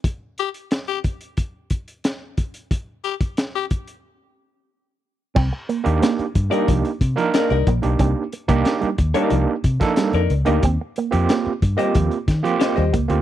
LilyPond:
<<
  \new Staff \with { instrumentName = "Hollow-body jazz guitar" } { \time 4/4 \key c \minor \tempo 4 = 91 r1 | r1 | r4. r16 <ees' bes' d''>16 r4 <ees' bes' d''>16 <ees' bes' d''>16 r8 | r4. r16 <ees' bes' d''>16 r4 r16 <ees' bes' d''>16 r16 <ees' bes' ees''>16 |
r4. r16 <g' c'' ees''>16 r4 <g' c'' ees''>16 <g' c'' ees''>16 r8 | }
  \new Staff \with { instrumentName = "Tenor saxophone" } { \time 4/4 \key c \minor r8 g'16 r8 g'16 r2 r8 | r8 g'16 r8 g'16 r2 r8 | r1 | r1 |
r1 | }
  \new Staff \with { instrumentName = "Tine electric piano" } { \time 4/4 \key c \minor r1 | r1 | r8. <bes d' ees' g'>8 r8 <bes d' ees' g'>8 r8 <bes d' ees' bes'>8 r8 <bes d' ees' g'>16~ | <bes d' ees' g'>16 r8 <bes d' ees' g'>8 r8 <bes d' ees' g'>8 r8 <bes d' ees' a'>8 r8 <bes d' ees' g'>16 |
r8. <bes c' f' g'>8 r8 <bes c' f' g'>8 r8 <bes c' f' g'>8 r8 <bes c' f' g'>16 | }
  \new Staff \with { instrumentName = "Clean electric guitar" } { \clef bass \time 4/4 \key c \minor r1 | r1 | c'16 r16 bes16 r16 bes16 r8 g16 f16 r8 f16 r16 g16 bes16 r16 | c'16 r8 bes16 r16 g16 r16 g16 f16 r8 f16 g16 r8 bes16 |
c'16 r16 bes16 r16 bes16 r8 g16 f16 r8 f16 r16 g16 bes16 r16 | }
  \new Staff \with { instrumentName = "Fingered electric bass" } { \clef bass \time 4/4 \key c \minor r1 | r1 | c,16 r8 ees,16 r8 g,16 r16 c,16 r16 c16 r8 c,16 bes,,16 b,,16 | c,16 r8 c,16 r8 ees,16 r16 c,16 r16 c16 r8 f,16 des,16 d,16 |
ees,16 r8 f,16 r8 g,16 r16 ees,16 r16 ees16 r8 ees,16 des,16 d,16 | }
  \new DrumStaff \with { instrumentName = "Drums" } \drummode { \time 4/4 <hh bd>8 hh16 hh16 <hh sn>16 hh16 <hh bd>16 hh16 <hh bd>8 <hh bd>16 hh16 <hh sn>8 <hh bd>16 hh16 | <hh bd>8 hh16 <hh bd>16 <hh sn>8 <hh bd>16 hh16 r4 r4 | <cymc bd>8 hh16 hh16 <hh sn>16 hh16 <hh bd>16 hh16 <hh bd>16 hh16 <hh bd>16 hh16 <hh sn>16 hh16 <hh bd>16 hh16 | <hh bd>8 hh16 <hh bd>16 <hh sn>16 hh16 <hh bd>16 hh16 hh8 <hh bd>16 <hh bd sn>16 <hh sn>16 hh16 hh16 hh16 |
<hh bd>8 hh16 hh16 <hh sn>8 <hh bd>16 hh16 <hh bd>16 hh16 <hh bd sn>16 hh16 <hh sn>16 hh16 <hh bd>16 hh16 | }
>>